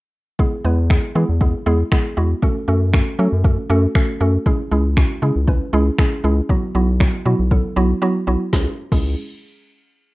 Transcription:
0.39 synth pluck G#3 B3 E4 G#4, kick
0.64 analog synth bass E2, synth pluck G#3 B3 E4 B4
0.90 synth pluck G#3 B3 E4 G#4, finger snap, kick
1.15 analog synth bass E3, synth pluck G#3 B3 E4 G#4
1.29 analog synth bass E2
1.41 synth pluck G#3 B3 E4 G#4, kick
1.66 analog synth bass E2, synth pluck G#3 B3 E4 G#4
1.92 synth pluck G#3 B3 E4 G#4, finger snap, kick
2.17 analog synth bass E2, synth pluck G#3 B3 E4 F#4
2.42 synth pluck A3 C#4 F#4 A4, kick
2.68 analog synth bass F#2, synth pluck A3 C#4 F#4 A4
2.93 synth pluck A3 C#4 F#4 A4, finger snap, kick
3.19 analog synth bass F#3, synth pluck A3 C#4 F#4 A4
3.32 analog synth bass F#2
3.44 synth pluck A3 C#4 F#4 A4, kick
3.70 analog synth bass F#2, synth pluck A3 C#4 F#4 A4
3.95 synth pluck A3 C#4 F#4 A4, finger snap, kick
4.20 analog synth bass F#2, synth pluck A3 C#4 F#4 A4
4.46 synth pluck G#3 C#4 E4 G#4, kick
4.71 analog synth bass C#2, synth pluck G#3 C#4 E4 G#4
4.97 synth pluck G#3 C#4 E4 F#4, finger snap, kick
5.22 analog synth bass C#3, synth pluck G#3 C#4 E4 G#4
5.36 analog synth bass C#2
5.47 synth pluck G#3 C#4 E4 B4, kick
5.73 analog synth bass C#2, synth pluck G#3 C#4 E4 G#4
5.98 synth pluck G#3 C#4 E4 G#4, finger snap, kick
6.24 analog synth bass C#2, synth pluck G#3 C#4 E4 G#4
6.49 synth pluck F#3 B3 E4 F#4, kick
6.75 analog synth bass B1, synth pluck F#3 B3 E4 F#4
7.00 synth pluck F#3 B3 E4 F#4, finger snap, kick
7.25 analog synth bass B2, synth pluck F#3 B3 E4 F#4
7.39 analog synth bass B1
7.51 synth pluck F#3 B3 E4 A4, kick
7.76 analog synth bass B1, synth pluck F#3 B3 E4 F#4
8.02 synth pluck F#3 B3 E4 F#4
8.27 analog synth bass B1, synth pluck F#3 B3 E4 F#4
8.53 analog synth bass C#2, synth pluck G#3 C#4 E4 G#4, kick, snare
8.92 analog synth bass C#2, synth pluck G#3 C#4 E4 G#4, kick, crash

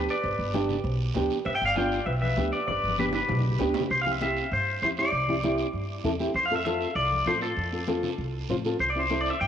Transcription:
Already playing: nylon-string guitar B3 D4 G4
0.09 clarinet B4, clean electric guitar D5, short guiro
0.24 upright bass G1, cowbell, high conga, long guiro
0.39 upright bass G1
0.54 nylon-string guitar B3 D4 G4, cowbell, high conga, short guiro
0.70 low conga, short guiro
0.84 upright bass B1, cowbell, high conga, long guiro
1.15 upright bass D2, nylon-string guitar B3 D4 G4, cowbell, high conga, low conga, low timbale, short guiro
1.30 short guiro
1.45 upright bass G1, clarinet B4, clean electric guitar E5, cowbell, high conga, long guiro
1.55 clarinet E5, clean electric guitar G5
1.62 upright bass G1
1.66 clarinet D5, clean electric guitar F5
1.75 nylon-string guitar B3 D4 F4, clarinet D5, clean electric guitar G5, cowbell, high conga, short guiro
1.91 short guiro
2.06 upright bass B1, clarinet B4, clean electric guitar E5, cowbell, high conga, long guiro
2.22 clarinet B4, clean electric guitar E5, high conga
2.37 upright bass D2, nylon-string guitar B3 D4 G4, cowbell, high conga, low timbale, short guiro
2.52 clarinet B4, clean electric guitar D5, short guiro
2.67 upright bass G1, clarinet B4, clean electric guitar D5, cowbell, high conga, long guiro
2.84 upright bass G1
2.88 high conga
2.98 nylon-string guitar B3 D4 G4, clarinet G4, clean electric guitar B4, cowbell, high conga, short guiro
3.09 low conga
3.13 clarinet G4, clean electric guitar B4, high timbale, short guiro
3.29 upright bass B1, cowbell, low conga, high timbale, long guiro
3.39 low conga
3.49 low conga
3.59 upright bass D2, nylon-string guitar B3 D4 G4, cowbell, low conga, low timbale, short guiro
3.74 low timbale, short guiro
3.80 low conga
3.90 upright bass C2, clean electric guitar C5, high conga, long guiro
4.01 clean electric guitar F5
4.06 nylon-string guitar C4 E4 G4, high conga
4.12 clean electric guitar E5
4.21 nylon-string guitar C4 E4 G4, clean electric guitar E5, high conga, short guiro
4.36 short guiro
4.51 upright bass G2, clean electric guitar C5, high conga, long guiro
4.82 upright bass E2, nylon-string guitar C4 E4 G4, clean electric guitar C5, high conga, short guiro
4.97 nylon-string guitar C4 E4 G4, clean electric guitar D5, short guiro
5.12 upright bass C2, high conga, long guiro
5.28 nylon-string guitar C4 E4 G4, high conga
5.43 nylon-string guitar C4 E4 G4, high conga, short guiro
5.58 short guiro
5.73 upright bass G2, high conga, long guiro
6.04 upright bass E2, nylon-string guitar C4 E4 A4, high conga, low conga, short guiro
6.19 nylon-string guitar C4 E4 G4, short guiro
6.34 upright bass F2, clean electric guitar C5, high conga, long guiro
6.46 clean electric guitar F5
6.51 nylon-string guitar C4 F4 A4
6.55 clean electric guitar E5
6.65 nylon-string guitar C4 F4 A4, clean electric guitar E5, high conga, short guiro
6.81 short guiro
6.95 upright bass C2, clean electric guitar D5, high conga, long guiro
7.12 high conga
7.26 upright bass A2, nylon-string guitar C4 F4 A4, clean electric guitar C5, high conga, short guiro
7.41 nylon-string guitar C4 F4 C5, clean electric guitar A4, short guiro
7.57 upright bass F2, high conga, long guiro
7.72 nylon-string guitar C4 F4 A4
7.87 nylon-string guitar C4 F4 A4, high conga, short guiro
8.03 low conga, short guiro
8.18 upright bass C2, high conga, long guiro
8.49 upright bass A2, nylon-string guitar C4 F4 C5, high conga, low conga, short guiro
8.64 nylon-string guitar C4 F4 A4, short guiro
8.79 upright bass C2, clean electric guitar C5, high conga, long guiro
8.90 clean electric guitar D5
8.95 nylon-string guitar C4 E4 G4, clean electric guitar C5
9.10 nylon-string guitar C4 E4 A4, high conga, short guiro
9.21 clean electric guitar D5
9.25 short guiro
9.30 clean electric guitar E5
9.41 upright bass G2, clean electric guitar G5, high conga, long guiro

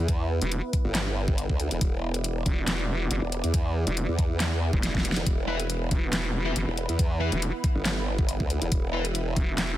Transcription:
Already playing: supersaw synth B3 E4 B4
0.00 wobble bass E2
0.08 kick, closed hi-hat
0.42 wobble bass E1, closed hi-hat
0.52 closed hi-hat
0.73 kick, closed hi-hat
0.85 wobble bass G1
0.95 snare, clap, closed hi-hat
1.28 kick
1.38 closed hi-hat
1.50 wobble bass D2, kick
1.60 closed hi-hat
1.71 wobble bass E1, closed hi-hat
1.81 wobble bass E1, supersaw synth D5, kick, closed hi-hat
2.14 closed hi-hat
2.24 closed hi-hat
2.46 wobble bass E1, kick, closed hi-hat
2.68 snare, clap, closed hi-hat
3.11 wobble bass F#1, closed hi-hat
3.22 wobble bass E1
3.32 closed hi-hat
3.44 wobble bass E2, closed hi-hat
3.54 kick, closed hi-hat
3.87 wobble bass E1, closed hi-hat
3.97 closed hi-hat
4.08 wobble bass E2
4.19 kick, closed hi-hat
4.40 snare, clap, closed hi-hat
4.73 wobble bass E1, kick
4.83 snare, closed hi-hat
4.95 kick, snare
5.05 closed hi-hat
5.12 snare
5.16 wobble bass E1, closed hi-hat
5.26 wobble bass E1, supersaw synth B4, kick, closed hi-hat
5.48 distorted electric guitar E4 B4 E5
5.60 closed hi-hat
5.70 closed hi-hat
5.91 wobble bass E1, kick, closed hi-hat
6.13 snare, clap, closed hi-hat
6.46 distorted electric guitar E4 B4 E5
6.56 wobble bass F#1, closed hi-hat
6.67 wobble bass E1
6.77 closed hi-hat
6.89 wobble bass E2, closed hi-hat
6.99 kick, closed hi-hat
7.20 distorted electric guitar E4 B4 E5
7.32 wobble bass E1, closed hi-hat
7.42 closed hi-hat
7.64 kick, closed hi-hat
7.75 wobble bass G1
7.85 snare, clap, closed hi-hat
8.19 kick
8.29 closed hi-hat
8.40 wobble bass D2, kick
8.50 closed hi-hat
8.62 wobble bass E1, closed hi-hat
8.72 wobble bass E1, supersaw synth E5, kick, closed hi-hat
8.93 distorted electric guitar E4 B4 E5
9.05 closed hi-hat
9.15 closed hi-hat
9.36 wobble bass E1, kick, closed hi-hat
9.58 snare, clap, closed hi-hat

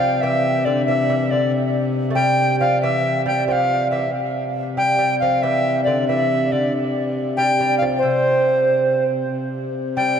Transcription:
Already playing: viola da gamba C3
0.00 lute F3, recorder F5
0.21 lute E3, recorder E5
0.65 lute D3, recorder D5
0.86 lute E3, recorder E5
1.09 lute E3
1.31 lute D3, recorder D5
2.10 lute A3
2.15 lute G3, recorder G5
2.60 lute F3, recorder F5
2.82 lute E3, recorder E5
3.26 lute G3, recorder G5
3.48 lute F3, recorder G5
3.52 recorder F5
3.91 lute E3, recorder E5
4.13 viola da gamba C3
4.77 lute G3, recorder G5
4.99 lute G3
5.20 lute F3, recorder F5
5.42 lute E3, recorder E5
5.84 lute D3, recorder D5
6.08 lute E3, recorder E5
6.52 lute D3, recorder D5
7.37 lute G3, recorder G5
7.61 lute G3
7.78 lute F3, recorder F5
7.98 recorder C5
8.03 lute C3
9.32 viola da gamba C3
9.97 lute G3, recorder G5

